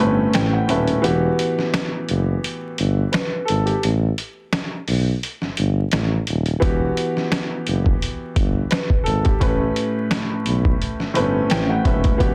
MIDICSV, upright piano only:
0, 0, Header, 1, 2, 480
1, 0, Start_track
1, 0, Tempo, 697674
1, 715, Time_signature, 4, 2, 24, 8
1, 8494, End_track
2, 0, Start_track
2, 0, Title_t, "Upright piano"
2, 0, Program_c, 0, 0
2, 0, Control_c, 0, 64, 127
2, 0, Note_on_c, 0, 45, 86
2, 0, Note_on_c, 0, 57, 80
2, 0, Note_on_c, 0, 60, 64
2, 0, Note_on_c, 0, 61, 73
2, 0, Note_on_c, 0, 71, 95
2, 38, Note_off_c, 0, 61, 0
2, 38, Note_on_c, 0, 61, 80
2, 236, Note_on_c, 0, 79, 78
2, 357, Note_off_c, 0, 79, 0
2, 365, Note_on_c, 0, 78, 70
2, 367, Note_off_c, 0, 45, 0
2, 370, Note_off_c, 0, 57, 0
2, 376, Note_off_c, 0, 71, 0
2, 396, Note_off_c, 0, 61, 0
2, 466, Note_on_c, 0, 45, 82
2, 467, Note_off_c, 0, 78, 0
2, 472, Note_on_c, 0, 57, 68
2, 475, Note_on_c, 0, 76, 67
2, 478, Note_on_c, 0, 61, 73
2, 484, Note_on_c, 0, 71, 82
2, 660, Note_off_c, 0, 45, 0
2, 663, Note_off_c, 0, 57, 0
2, 666, Note_off_c, 0, 61, 0
2, 669, Note_off_c, 0, 71, 0
2, 698, Note_off_c, 0, 76, 0
2, 700, Note_on_c, 0, 52, 92
2, 706, Note_on_c, 0, 59, 81
2, 712, Note_on_c, 0, 66, 80
2, 718, Note_on_c, 0, 67, 92
2, 724, Control_c, 0, 64, 0
2, 731, Note_off_c, 0, 60, 0
2, 825, Control_c, 0, 64, 127
2, 1447, Note_off_c, 0, 52, 0
2, 1450, Note_off_c, 0, 59, 0
2, 1453, Note_off_c, 0, 66, 0
2, 1456, Note_off_c, 0, 67, 0
2, 2148, Note_on_c, 0, 71, 63
2, 2376, Note_on_c, 0, 69, 75
2, 2379, Note_off_c, 0, 71, 0
2, 2509, Note_off_c, 0, 69, 0
2, 2516, Note_on_c, 0, 67, 69
2, 2624, Note_off_c, 0, 67, 0
2, 2644, Control_c, 0, 64, 0
2, 2748, Control_c, 0, 64, 127
2, 4539, Note_on_c, 0, 52, 88
2, 4545, Note_on_c, 0, 59, 81
2, 4551, Note_on_c, 0, 66, 81
2, 4557, Note_on_c, 0, 67, 91
2, 4563, Control_c, 0, 64, 0
2, 4687, Control_c, 0, 64, 127
2, 5287, Note_off_c, 0, 52, 0
2, 5290, Note_off_c, 0, 59, 0
2, 5293, Note_off_c, 0, 66, 0
2, 5296, Note_off_c, 0, 67, 0
2, 5989, Note_on_c, 0, 71, 66
2, 6217, Note_on_c, 0, 69, 79
2, 6220, Note_off_c, 0, 71, 0
2, 6350, Note_off_c, 0, 69, 0
2, 6359, Note_on_c, 0, 67, 69
2, 6466, Note_on_c, 0, 45, 82
2, 6473, Note_on_c, 0, 57, 79
2, 6479, Note_on_c, 0, 61, 78
2, 6484, Control_c, 0, 64, 0
2, 6484, Note_on_c, 0, 71, 95
2, 6590, Note_off_c, 0, 67, 0
2, 6601, Control_c, 0, 64, 127
2, 7211, Note_off_c, 0, 45, 0
2, 7214, Note_off_c, 0, 57, 0
2, 7217, Note_off_c, 0, 61, 0
2, 7220, Note_off_c, 0, 71, 0
2, 7662, Note_on_c, 0, 45, 89
2, 7668, Note_on_c, 0, 57, 81
2, 7674, Note_on_c, 0, 60, 67
2, 7680, Note_on_c, 0, 71, 96
2, 7719, Note_on_c, 0, 61, 80
2, 7723, Note_off_c, 0, 60, 0
2, 7917, Note_on_c, 0, 79, 81
2, 8037, Note_off_c, 0, 79, 0
2, 8045, Note_on_c, 0, 78, 68
2, 8048, Note_off_c, 0, 45, 0
2, 8051, Note_off_c, 0, 57, 0
2, 8057, Note_off_c, 0, 71, 0
2, 8076, Note_off_c, 0, 61, 0
2, 8146, Note_on_c, 0, 45, 81
2, 8147, Note_off_c, 0, 78, 0
2, 8152, Note_on_c, 0, 57, 68
2, 8155, Note_on_c, 0, 76, 68
2, 8159, Note_on_c, 0, 61, 72
2, 8164, Note_on_c, 0, 71, 83
2, 8340, Note_off_c, 0, 45, 0
2, 8343, Note_off_c, 0, 57, 0
2, 8346, Note_off_c, 0, 61, 0
2, 8349, Note_off_c, 0, 71, 0
2, 8378, Note_off_c, 0, 76, 0
2, 8380, Note_on_c, 0, 52, 91
2, 8386, Note_on_c, 0, 59, 80
2, 8392, Note_on_c, 0, 66, 80
2, 8398, Note_on_c, 0, 67, 97
2, 8405, Control_c, 0, 64, 0
2, 8494, Note_off_c, 0, 52, 0
2, 8494, Note_off_c, 0, 59, 0
2, 8494, Note_off_c, 0, 66, 0
2, 8494, Note_off_c, 0, 67, 0
2, 8494, End_track
0, 0, End_of_file